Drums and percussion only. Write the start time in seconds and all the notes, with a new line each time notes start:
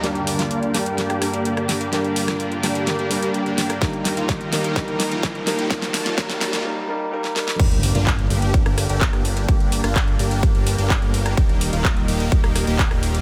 0.04 snare, closed hi-hat
0.15 closed hi-hat
0.27 open hi-hat
0.39 snare, closed hi-hat
0.51 closed hi-hat
0.63 closed hi-hat
0.74 snare, open hi-hat
0.86 closed hi-hat
0.98 snare, closed hi-hat
1.10 cross-stick, closed hi-hat
1.22 cross-stick, open hi-hat
1.33 closed hi-hat
1.45 closed hi-hat
1.57 cross-stick, closed hi-hat
1.69 snare, open hi-hat
1.81 closed hi-hat
1.93 snare, closed hi-hat
2.04 closed hi-hat
2.16 open hi-hat
2.28 cross-stick, snare, closed hi-hat
2.40 closed hi-hat
2.52 closed hi-hat
2.63 snare, open hi-hat
2.75 closed hi-hat
2.87 snare, closed hi-hat
2.99 closed hi-hat
3.11 open hi-hat
3.23 closed hi-hat
3.34 closed hi-hat
3.46 closed hi-hat
3.58 snare, open hi-hat
3.70 cross-stick, closed hi-hat
3.82 kick, snare, closed hi-hat
3.93 closed hi-hat
4.05 snare, open hi-hat
4.17 closed hi-hat
4.29 kick, snare, closed hi-hat
4.41 closed hi-hat
4.53 snare, open hi-hat
4.64 closed hi-hat
4.76 kick, snare, closed hi-hat
4.88 closed hi-hat
5.00 snare, open hi-hat
5.12 closed hi-hat
5.23 kick, snare, closed hi-hat
5.35 closed hi-hat
5.47 snare, open hi-hat
5.59 closed hi-hat
5.71 kick, snare, closed hi-hat
5.82 snare, closed hi-hat
5.94 snare, open hi-hat
6.06 snare, closed hi-hat
6.18 kick, snare, closed hi-hat
6.30 snare, closed hi-hat
6.41 snare, open hi-hat
6.53 snare, closed hi-hat
7.24 snare
7.36 snare
7.48 snare
7.60 kick, closed hi-hat, crash
7.71 closed hi-hat
7.83 open hi-hat
7.95 closed hi-hat
8.07 kick, clap, closed hi-hat
8.19 closed hi-hat
8.30 open hi-hat
8.42 closed hi-hat
8.54 kick, closed hi-hat
8.66 cross-stick, closed hi-hat
8.78 cross-stick, open hi-hat
8.89 closed hi-hat
9.01 kick, clap, closed hi-hat
9.13 cross-stick, closed hi-hat
9.25 open hi-hat
9.37 closed hi-hat
9.49 kick, closed hi-hat
9.60 closed hi-hat
9.72 open hi-hat
9.84 cross-stick, closed hi-hat
9.96 kick, clap, closed hi-hat
10.08 closed hi-hat
10.19 open hi-hat
10.31 closed hi-hat
10.43 kick, closed hi-hat
10.55 closed hi-hat
10.67 open hi-hat
10.78 closed hi-hat
10.90 kick, clap, closed hi-hat
11.02 closed hi-hat
11.14 open hi-hat
11.26 cross-stick, closed hi-hat
11.37 kick, closed hi-hat
11.49 closed hi-hat
11.61 open hi-hat
11.73 closed hi-hat
11.85 kick, clap, closed hi-hat
11.97 closed hi-hat
12.08 open hi-hat
12.20 closed hi-hat
12.32 kick, closed hi-hat
12.44 cross-stick, closed hi-hat
12.56 cross-stick, open hi-hat
12.67 closed hi-hat
12.79 kick, clap, closed hi-hat
12.91 cross-stick, closed hi-hat
13.03 open hi-hat
13.15 closed hi-hat